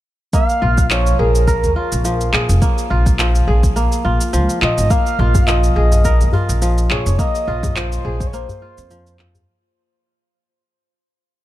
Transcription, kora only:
0.33 A#3
0.62 F4
0.91 F3
1.19 G#4
1.47 A#4
1.76 F4
2.05 F3
2.33 G#4
2.62 A#3
2.90 F4
3.19 F3
3.47 G#4
3.76 A#3
4.05 F4
4.33 F3
4.62 F3
4.90 A#3
5.19 F4
5.47 F3
5.76 G#4
6.05 A#4
6.33 F4
6.62 F3
6.91 G#4
7.19 A#3
7.48 F4
7.76 F3
8.05 G#4
8.33 A#3
8.62 F4
8.91 F3
9.19 F3

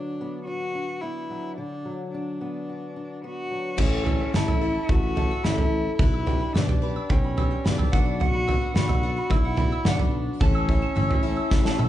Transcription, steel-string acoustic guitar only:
Already playing: D3 F#3 B3 D4 F#4
0.21 B3
0.47 D4
0.75 D4
1.03 B3
1.30 F#3
1.58 D3
1.85 F#3
2.14 D4
2.41 B3
2.69 F#4
2.96 D4
3.24 B3
3.50 F#3

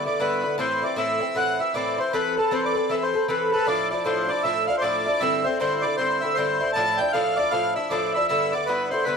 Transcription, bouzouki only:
0.05 D3 B3 E4
0.20 G2 D3 B3 E4
0.43 D3 B3 E4
0.58 A2 E3 C4 E4
0.82 E3 C4 E4
0.96 A2 E3 C4 E4
1.20 E3 C4 E4
1.35 A2 E3 C4 E4
1.59 E3 C4 E4
1.74 A2 E3 C4 E4
1.98 E3 C4 E4
2.13 E3 C4 A4 B4
2.37 C4 A4 B4
2.51 E3 C4 A4 B4
2.75 C4 A4 B4
2.89 E3 C4 A4 B4
3.14 C4 A4 B4
3.28 E3 C4 A4 B4
3.52 C4 A4 B4
3.67 A2 F3 D4 E4
3.90 F3 D4 E4
4.05 A2 F3 D4 E4
4.29 F3 D4 E4
4.43 A2 F3 D4 E4
4.67 F3 D4 E4
4.82 A2 F3 D4 E4
5.06 F3 D4 E4
5.21 G2 D3 C4 E4
5.44 D3 C4 E4
5.60 G2 D3 C4 E4
5.83 D3 C4 E4
5.98 G2 D3 C4 E4
6.22 D3 C4 E4
6.37 G2 D3 C4 E4
6.60 D3 C4 E4
6.75 A2 F3 D4 E4
6.99 F3 D4 E4
7.13 A2 F3 D4 E4
7.37 F3 D4 E4
7.51 A2 F3 D4 E4
7.76 F3 D4 E4
7.90 A2 F3 D4 E4
8.14 F3 D4 E4
8.29 G2 D3 B3 E4
8.53 D3 B3 E4
8.67 G2 D3 B3 E4
8.91 D3 B3 E4
9.05 G2 D3 B3 E4

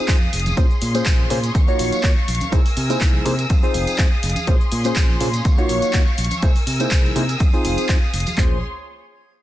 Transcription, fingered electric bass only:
0.09 F2
0.33 F1
0.57 A#1
0.82 A#2
1.06 A#1
1.31 A#2
1.55 D#2
1.79 A#1
1.93 muted fingered electric bass stroke
2.04 D#2
2.28 A#1
2.52 C2
2.66 muted fingered electric bass stroke
2.77 C3
3.01 C2
3.26 C3
3.50 F2
3.63 muted fingered electric bass stroke
3.74 F1
3.88 muted fingered electric bass stroke
3.99 F2
4.23 F1
4.48 A#1
4.72 A#2
4.96 A#1
5.21 A#2
5.45 D#2
5.70 A#1
5.83 muted fingered electric bass stroke
5.94 D#2
6.18 A#1
6.43 C2
6.56 muted fingered electric bass stroke
6.67 C3
6.91 C2
7.16 C3
7.40 F2
7.53 muted fingered electric bass stroke
7.65 F1
7.78 muted fingered electric bass stroke
7.89 F2
8.13 F1
8.38 A#1

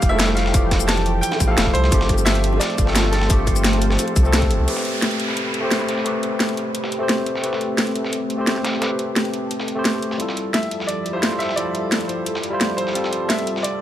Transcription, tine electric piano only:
Already playing: F3 A3 E4 G4
0.09 F3 A3 E4 A4
0.52 E3 F3 A3
0.56 G4
1.47 F3 A3 E4
1.51 A4
1.90 F3 A3 C4
1.94 G4
2.85 F3 A3 C4
2.89 A4
3.28 F3 A3 C4
3.32 G4
4.23 F3 A3 C4
4.27 A4
4.66 A3 C4 G4 B4
5.61 A3 C4 G4 C5
6.04 A3 C4 G4
6.08 B4
6.99 A3 C4 G4
7.03 C5
7.42 A3 C4 G4
7.46 B4
8.37 A3 C4 G4
8.41 C5
8.80 A3 C4 G4 B4
9.75 A3 C4 G4
9.79 C5
10.18 G3 E4 F4
10.22 A4
11.13 G3 E4 F4 C5
11.56 G3 E4 F4
11.60 A4
12.50 G3 E4 F4
12.54 C5
12.93 G3 C4 F4
12.97 A4

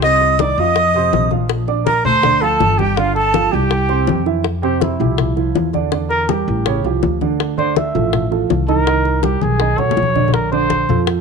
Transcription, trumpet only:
0.04 D#5
0.40 D5
0.59 D#5
1.86 A#4
2.05 C5
2.42 A4
2.78 G4
2.97 F4
3.15 A4
3.52 G4
4.63 G4
4.81 E4
6.10 A#4
6.30 G4
7.58 C5
7.77 E5
8.68 A#4
9.24 G4
9.42 G#4
9.78 C#5
10.34 A#4
10.52 C5

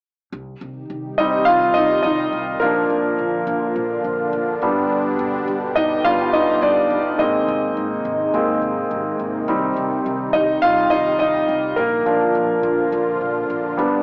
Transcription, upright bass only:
0.33 C2
0.61 C2
0.90 C2
1.18 C2
1.47 C2
1.75 C2
2.04 C2
2.33 C2
2.61 A#1
2.90 A#1
3.19 A#1
3.47 A#1
3.76 A#1
4.04 A#1
4.33 A#1
4.62 G1
5.19 G1
5.48 G1
5.77 G1
6.05 G1
6.34 G1
6.62 G1
6.90 G1
7.19 G#1
7.48 G#1
7.77 G#1
8.05 G#1
8.34 G#1
8.62 G#1
8.91 G#1
9.19 G#1
9.48 C2
9.77 C2
10.06 C2
10.34 C2
10.63 C2
10.92 C2
11.20 C2
11.49 C2
11.78 A#1
12.06 A#1
12.35 A#1
12.63 A#1
12.92 A#1
13.21 A#1
13.50 A#1
13.79 G1

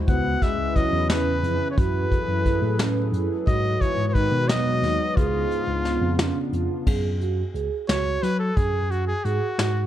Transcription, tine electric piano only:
0.08 C#2
0.58 C#2
0.93 E2
1.43 F2
1.78 F#2
2.28 F#2
2.62 A2
3.12 F#2
3.47 G#2
3.98 G#2
4.32 B2
4.82 D#2
5.17 C#2
5.67 C#2
6.01 F2
6.53 F2
6.87 F#2
7.55 C#2
7.89 C#2
8.23 F#3
8.57 F#2
9.25 G#2
9.59 G#2

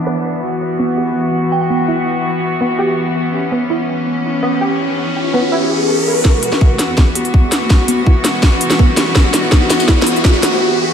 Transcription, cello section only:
Already playing: E3 B3 D4
0.43 F#4
3.33 C#4
6.25 E3 B3 F#4

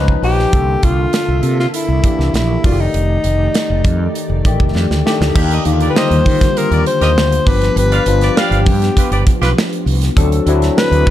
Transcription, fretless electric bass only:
Already playing: C#2
0.22 A#1
0.53 C2
0.83 C2
1.28 C2
1.43 C3
1.88 C2
2.19 C2
2.34 A#1
2.64 F1
2.94 F1
3.24 F1
3.70 F1
3.84 F2
4.30 F1
4.45 A1
4.60 F1
4.75 F2
4.91 D2
5.20 D2
5.35 D#2
5.66 D#2
6.11 D#2
6.26 D#3
6.71 D#2
7.01 D#2
7.16 D2
7.46 G1
7.76 G1
8.06 G1
8.51 G1
8.66 G2
9.11 G1
9.41 B1
9.86 C2
10.17 D2
10.46 D2
10.91 D2
11.07 D3

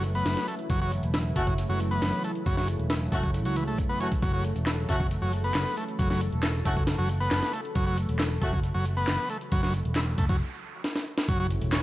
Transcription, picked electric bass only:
Already playing: F#1
0.26 F#1
0.70 F#1
1.03 E1
1.36 F#1
1.69 F#1
2.02 F#1
2.46 F#1
2.80 E1
3.12 F#1
3.46 C#2
3.79 F#1
4.23 F#1
4.56 E1
4.89 F#1
5.22 F#1
5.55 F#1
5.99 F#1
6.33 E1
6.66 F#1
6.99 F#1
7.32 F#1
7.76 F#1
8.09 E1
8.42 F#1
8.75 F#1
9.08 F#1
9.52 F#1
9.86 E1
10.18 F#1
11.29 F#1
11.62 E1

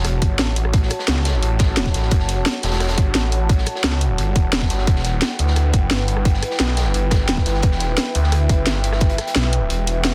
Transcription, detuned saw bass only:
Already playing: E1
0.22 G1
0.39 A1
1.08 C#2
1.43 A1
1.94 A1
2.12 F#1
2.63 E1
2.98 G1
3.15 A1
3.84 C#2
4.18 G1
4.36 E1
4.70 G1
4.87 E1
5.39 D2
5.74 F#1
5.91 G1
6.60 B1
6.94 G1
7.46 G1
7.63 E1
8.15 D2
8.49 F#1
8.67 G1
9.36 B1
9.70 E1

